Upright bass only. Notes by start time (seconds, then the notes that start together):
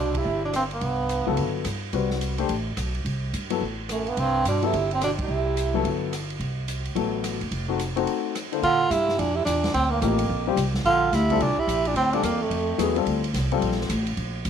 Already playing: C2
0.25 G1
0.81 C2
1.27 C#2
1.37 G1
1.65 G2
1.93 C2
2.49 A1
2.77 B1
3.05 C2
3.33 G2
3.61 A1
4.17 C2
4.45 G2
4.73 G1
5.18 G2
5.28 C2
5.84 G1
6.40 C2
6.95 A1
7.41 F#1
7.51 F1
8.62 A#2
8.90 G2
9.18 F2
9.46 E2
9.74 D2
10.02 A1
10.29 A#1
10.56 C2
10.84 A#1
11.12 D2
11.40 C2
11.57 muted upright bass stroke
11.67 A#1
11.94 D2
12.23 E2
12.50 F2
12.78 E2
13.06 D2
13.34 C2
13.61 A#1
13.90 A1
14.17 A#1
14.45 D2